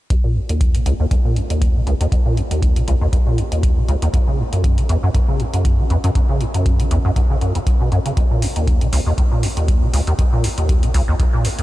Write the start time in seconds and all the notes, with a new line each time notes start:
0.10 D#2, kick, closed hi-hat
0.24 A#2
0.36 D#2
0.49 D#2, closed hi-hat
0.61 kick, closed hi-hat
0.75 D#3, closed hi-hat
0.86 C#2, closed hi-hat
1.00 D#2
1.11 D#2, kick, closed hi-hat
1.25 A#2
1.36 D#2, closed hi-hat
1.50 D#2, closed hi-hat
1.62 kick, closed hi-hat
1.75 D#3
1.87 C#2, closed hi-hat
2.01 D#2, closed hi-hat
2.12 D#2, kick, closed hi-hat
2.26 A#2
2.37 D#2, closed hi-hat
2.51 D#2, closed hi-hat
2.62 kick, closed hi-hat
2.76 D#3, closed hi-hat
2.88 C#2, kick, closed hi-hat
3.01 D#2
3.13 D#2, kick, closed hi-hat
3.27 A#2
3.38 D#2, closed hi-hat
3.52 D#2, closed hi-hat
3.63 kick, closed hi-hat
3.77 D#3
3.88 C#2, closed hi-hat
4.02 D#2, closed hi-hat
4.14 F#2, kick, closed hi-hat
4.27 C#3
4.39 F#2
4.53 F#2, closed hi-hat
4.64 kick, closed hi-hat
4.78 F#3, closed hi-hat
4.89 E2, closed hi-hat
5.03 F#2
5.14 F#2, kick, closed hi-hat
5.28 C#3
5.40 F#2, closed hi-hat
5.54 F#2, closed hi-hat
5.65 kick, closed hi-hat
5.79 F#3
5.90 E2, closed hi-hat
6.04 F#2, closed hi-hat
6.15 F#2, kick, closed hi-hat
6.29 C#3
6.41 F#2, closed hi-hat
6.54 F#2, closed hi-hat
6.66 kick, closed hi-hat
6.80 F#3, closed hi-hat
6.91 E2, kick, closed hi-hat
7.05 F#2
7.16 F#2, kick, closed hi-hat
7.30 C#3
7.41 F#2, closed hi-hat
7.55 E2, closed hi-hat
7.67 kick, closed hi-hat
7.80 B2
7.92 F#2, closed hi-hat
8.06 C#3, closed hi-hat
8.17 D#2, kick, closed hi-hat
8.31 A#2
8.42 D#2, open hi-hat
8.56 D#2, closed hi-hat
8.68 kick, closed hi-hat
8.81 D#3, closed hi-hat
8.93 C#2, open hi-hat
9.06 D#2
9.18 D#2, kick, closed hi-hat
9.32 A#2
9.43 D#2, open hi-hat
9.57 D#2, closed hi-hat
9.68 kick, closed hi-hat
9.82 D#3
9.94 C#2, open hi-hat
10.07 D#2, closed hi-hat
10.19 D#2, kick, closed hi-hat
10.32 A#2
10.44 D#2, open hi-hat
10.58 D#2, closed hi-hat
10.69 kick, closed hi-hat
10.83 D#3, closed hi-hat
10.94 C#2, kick, open hi-hat
11.08 D#2
11.20 D#2, kick, closed hi-hat
11.33 A#2
11.45 D#2, open hi-hat
11.59 D#2, closed hi-hat